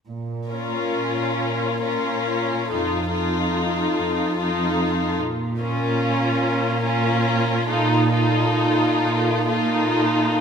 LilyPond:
<<
  \new Staff \with { instrumentName = "Violin section" } { \time 6/8 \key bes \minor \tempo 4. = 46 r8 bes'4. bes'4 | a'8 a'4. a'4 | r8 bes'4. bes'4 | a'8 a'4. a'4 | }
  \new Staff \with { instrumentName = "Violin section" } { \time 6/8 \key bes \minor r8 f'4. f'4 | f'8 f'4. f'4 | r8 f'4. f'4 | f'8 f'4. f'4 | }
  \new Staff \with { instrumentName = "Viola section" } { \time 6/8 \key bes \minor r8 des'4. des'4 | ees'8 ees'4. ees'4 | r8 des'4. des'4 | ees'8 ees'4. ees'4 | }
  \new Staff \with { instrumentName = "Cello section" } { \clef bass \time 6/8 \key bes \minor bes,4. bes,4. | f,4. f,4. | bes,4. bes,4. | bes,4. bes,4. | }
>>